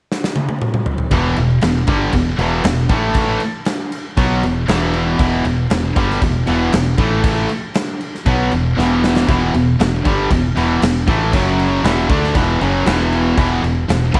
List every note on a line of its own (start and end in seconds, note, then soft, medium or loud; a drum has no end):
0.12 snare medium
0.24 snare medium
0.36 high tom medium
0.49 high tom medium
0.61 mid tom loud
0.74 mid tom medium
0.86 floor tom loud
0.98 floor tom medium
1.11 1.35 E1 loud
1.11 1.35 E2 medium
1.11 1.35 B2 medium
1.11 1.37 E3 medium
1.11 kick loud
1.11 crash medium
1.36 1.61 E1 medium
1.36 1.57 E2 medium
1.36 1.57 B2 medium
1.36 crash medium
1.61 1.86 E1 medium
1.61 1.83 E2 medium
1.61 1.83 B2 medium
1.61 snare loud
1.61 crash medium
1.87 2.12 G1 loud
1.87 2.12 G2 medium
1.87 2.13 D3 loud
1.87 2.13 G3 medium
1.87 kick loud
1.87 crash medium
2.12 2.37 E1 medium
2.12 2.33 E2 medium
2.12 2.34 B2 medium
2.12 kick medium
2.12 crash medium
2.38 2.62 E1 medium
2.38 2.63 E2 medium
2.38 2.63 B2 loud
2.38 2.64 E3 loud
2.38 crash medium
2.64 2.88 E1 medium
2.64 2.85 E2 medium
2.64 2.85 B2 medium
2.64 snare loud
2.64 crash medium
2.89 3.37 A1 loud
2.89 3.40 A2 loud
2.89 3.40 E3 loud
2.89 3.41 A3 loud
2.89 kick loud
2.89 crash medium
3.14 kick loud
3.14 crash medium
3.40 crash medium
3.65 snare loud
3.65 crash medium
3.92 crash medium
4.17 4.41 B1 loud
4.17 4.42 B2 loud
4.17 4.42 F#3 medium
4.17 4.43 B3 loud
4.17 kick loud
4.17 crash medium
4.43 4.67 E1 medium
4.43 4.63 E2 medium
4.43 4.63 B2 medium
4.43 crash medium
4.68 5.16 E1 loud
4.68 5.18 E2 medium
4.68 5.19 B2 loud
4.68 5.19 E3 loud
4.68 snare loud
4.68 crash medium
4.94 crash medium
5.19 5.43 E1 loud
5.19 5.44 E2 loud
5.19 5.44 B2 medium
5.19 5.45 E3 medium
5.19 kick loud
5.19 crash medium
5.45 5.69 E1 medium
5.45 5.65 E2 medium
5.45 5.66 B2 medium
5.45 crash medium
5.70 5.94 E1 medium
5.70 5.91 E2 medium
5.70 5.91 B2 medium
5.70 snare loud
5.70 crash medium
5.95 6.20 G1 loud
5.95 6.20 G2 loud
5.95 6.21 D3 loud
5.95 6.21 G3 loud
5.95 kick loud
5.95 crash medium
6.10 snare soft
6.21 6.45 E1 medium
6.21 6.42 E2 medium
6.21 6.42 B2 medium
6.21 kick loud
6.21 crash medium
6.46 6.72 E1 loud
6.46 6.71 E2 loud
6.46 6.72 B2 loud
6.46 6.72 E3 loud
6.46 crash medium
6.72 6.97 E1 medium
6.72 6.93 E2 medium
6.72 6.93 B2 medium
6.72 snare loud
6.72 crash loud
6.98 7.46 A1 medium
6.98 7.48 A2 loud
6.98 7.49 E3 loud
6.98 7.49 A3 loud
6.98 kick loud
6.98 crash medium
7.24 kick loud
7.24 crash medium
7.49 crash medium
7.74 snare loud
7.74 crash medium
8.01 crash medium
8.15 snare soft
8.26 8.50 B1 medium
8.26 8.51 B2 medium
8.26 8.51 F#3 loud
8.26 8.51 B3 loud
8.26 kick loud
8.26 crash medium
8.51 8.75 E1 medium
8.51 8.72 E2 medium
8.51 8.72 B2 medium
8.51 crash medium
8.77 9.25 E1 medium
8.77 9.26 E2 loud
8.77 9.27 B2 medium
8.77 9.28 E3 loud
8.77 snare medium
9.04 snare loud
9.16 snare medium
9.27 9.52 E1 loud
9.27 9.52 E2 medium
9.27 9.53 B2 medium
9.27 9.53 E3 loud
9.27 kick loud
9.27 crash medium
9.53 9.78 E1 medium
9.53 9.74 E2 medium
9.53 9.74 B2 medium
9.53 crash medium
9.79 10.04 E1 medium
9.79 10.00 E2 medium
9.79 10.00 B2 medium
9.79 snare loud
9.79 crash medium
10.03 10.29 G1 loud
10.03 10.29 G2 loud
10.03 10.29 D3 loud
10.03 10.30 G3 loud
10.03 kick loud
10.03 crash medium
10.30 10.55 E1 medium
10.30 10.51 E2 medium
10.30 10.51 B2 medium
10.30 kick medium
10.30 crash medium
10.55 10.80 E1 medium
10.55 10.80 E2 loud
10.55 10.81 B2 loud
10.55 10.81 E3 loud
10.55 crash medium
10.81 11.06 E1 medium
10.81 11.02 E2 medium
10.81 11.02 B2 medium
10.81 snare loud
10.81 crash medium
11.07 11.31 A1 loud
11.07 11.32 A2 loud
11.07 11.32 E3 loud
11.07 11.33 A3 loud
11.07 kick loud
11.07 crash medium
11.33 11.81 F#1 loud
11.33 11.83 F#2 medium
11.33 11.83 C#3 medium
11.33 11.84 F#3 medium
11.33 kick loud
11.33 crash medium
11.59 crash medium
11.83 12.08 E1 medium
11.83 12.08 E2 loud
11.83 12.09 B2 loud
11.83 12.09 E3 loud
11.83 snare loud
11.83 crash medium
12.09 12.33 D2 loud
12.09 12.34 D3 loud
12.09 12.34 A3 loud
12.09 12.35 D4 loud
12.09 kick loud
12.09 crash medium
12.24 snare soft
12.34 12.59 E1 loud
12.34 12.60 E2 medium
12.34 12.60 B2 loud
12.34 12.60 E3 loud
12.34 kick loud
12.34 crash medium
12.60 12.85 F#1 medium
12.60 12.85 F#2 loud
12.60 12.86 C#3 loud
12.60 12.86 F#3 loud
12.60 crash medium
12.86 13.34 E1 loud
12.86 13.36 E2 medium
12.86 13.36 B2 loud
12.86 13.37 E3 loud
12.86 snare loud
12.86 crash medium
13.12 crash medium
13.37 13.61 E1 loud
13.37 13.61 E2 medium
13.37 13.62 B2 medium
13.37 13.63 E3 loud
13.37 kick loud
13.37 crash medium
13.63 13.87 E1 medium
13.63 13.83 E2 medium
13.63 13.84 B2 medium
13.63 crash medium
13.88 14.12 E1 medium
13.88 14.09 E2 medium
13.88 14.09 B2 medium
13.88 snare loud
13.88 crash medium
14.13 14.20 G1 loud
14.13 14.20 G2 loud
14.13 14.20 D3 loud
14.13 14.20 G3 loud
14.13 kick loud
14.13 crash medium